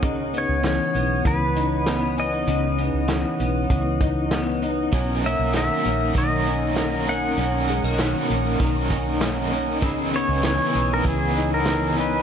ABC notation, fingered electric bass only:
X:1
M:4/4
L:1/16
Q:1/4=98
K:C#dor
V:1 name="Fingered electric bass" clef=bass
C,,3 C,,2 z B,,,2 C,,8 | C,,3 C,,2 z B,,,2 C,,8 | B,,,3 B,,,2 z A,,,2 B,,,8 | B,,,3 B,,,2 z A,,,2 B,,,8 |
C,,3 C,,2 z B,,,2 C,,8 |]